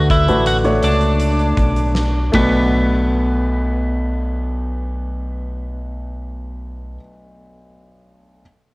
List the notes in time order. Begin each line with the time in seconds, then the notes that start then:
Already playing: D2 D3 A3 D4 F#4 B4
0.10 E4, kick, closed hi-hat
0.28 A1 A3 D4 F#4 B4, closed hi-hat
0.46 F#4, closed hi-hat
0.64 A3 D4 F#4 C#5, closed hi-hat
0.82 C#2 D4, closed hi-hat
1.01 closed hi-hat
1.20 closed hi-hat
1.39 closed hi-hat
1.57 B1, kick, closed hi-hat
1.76 closed hi-hat
1.95 snare
2.32 B1 A3 B3 D4 F#4 B4, kick, ride